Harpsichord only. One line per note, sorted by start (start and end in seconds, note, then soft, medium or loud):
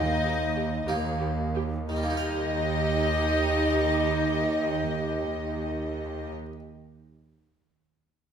0.00 0.75 D#2 medium
0.88 1.75 D#2 medium
0.88 1.61 A#3 medium
0.88 1.61 D#4 medium
1.89 6.31 D#3 medium
1.96 6.39 G3 medium
2.03 6.46 A#3 medium
2.10 6.53 D#4 medium
2.17 6.60 A#4 medium